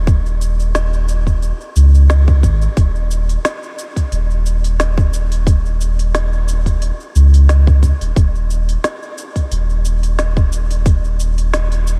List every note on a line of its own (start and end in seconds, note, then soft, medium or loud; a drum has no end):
0.00 1.51 D#1 loud
0.07 kick loud
0.07 shaker soft
0.26 shaker soft
0.41 shaker medium
0.60 shaker soft
0.75 snare medium
0.75 shaker soft
0.93 shaker soft
1.09 shaker medium
1.27 kick medium
1.27 shaker soft
1.42 shaker soft
1.61 shaker soft
1.76 2.43 C#2 medium
1.76 shaker medium
1.95 shaker soft
2.10 snare loud
2.10 shaker soft
2.28 kick loud
2.28 shaker soft
2.43 2.67 G#1 medium
2.43 kick medium
2.43 shaker medium
2.62 shaker soft
2.77 3.36 D#1 medium
2.77 kick loud
2.77 open hi-hat medium
2.77 shaker soft
2.96 shaker soft
3.11 shaker medium
3.29 open hi-hat soft
3.29 shaker soft
3.45 snare loud
3.45 open hi-hat medium
3.45 shaker soft
3.63 shaker soft
3.79 shaker medium
3.96 kick medium
3.96 open hi-hat soft
3.96 shaker soft
4.12 6.90 D#1 loud
4.12 open hi-hat soft
4.12 shaker soft
4.31 shaker soft
4.46 shaker medium
4.64 open hi-hat soft
4.64 shaker soft
4.80 snare medium
4.80 open hi-hat medium
4.80 shaker soft
4.98 kick loud
4.98 shaker soft
5.14 shaker medium
5.32 open hi-hat soft
5.32 shaker soft
5.47 kick loud
5.47 open hi-hat medium
5.47 shaker soft
5.66 shaker soft
5.81 shaker medium
5.99 open hi-hat soft
5.99 shaker soft
6.15 snare medium
6.15 open hi-hat medium
6.15 shaker soft
6.33 shaker soft
6.48 shaker medium
6.66 kick medium
6.66 open hi-hat soft
6.66 shaker soft
6.82 open hi-hat medium
6.82 shaker soft
7.00 shaker soft
7.15 7.92 C#2 medium
7.15 shaker medium
7.34 open hi-hat soft
7.34 shaker soft
7.49 snare medium
7.49 open hi-hat soft
7.49 shaker soft
7.67 kick loud
7.67 shaker soft
7.83 kick medium
7.83 shaker medium
8.01 8.11 D#1 medium
8.01 open hi-hat soft
8.01 shaker soft
8.16 8.76 D#1 loud
8.16 kick loud
8.16 open hi-hat medium
8.16 shaker soft
8.35 shaker soft
8.50 shaker medium
8.69 open hi-hat soft
8.69 shaker soft
8.84 snare medium
8.84 open hi-hat medium
8.84 shaker soft
9.03 shaker soft
9.18 shaker medium
9.36 kick medium
9.36 open hi-hat soft
9.36 shaker soft
9.51 11.99 D#1 loud
9.51 open hi-hat medium
9.51 shaker soft
9.70 shaker soft
9.85 shaker medium
10.03 open hi-hat soft
10.03 shaker soft
10.19 snare medium
10.19 open hi-hat medium
10.19 shaker soft
10.37 kick loud
10.37 shaker soft
10.53 shaker medium
10.71 open hi-hat soft
10.71 shaker soft
10.86 kick loud
10.86 open hi-hat medium
10.86 shaker soft
11.04 shaker soft
11.20 shaker medium
11.38 open hi-hat soft
11.38 shaker soft
11.53 snare loud
11.53 open hi-hat medium
11.53 shaker soft
11.72 open hi-hat soft
11.72 shaker soft
11.87 shaker medium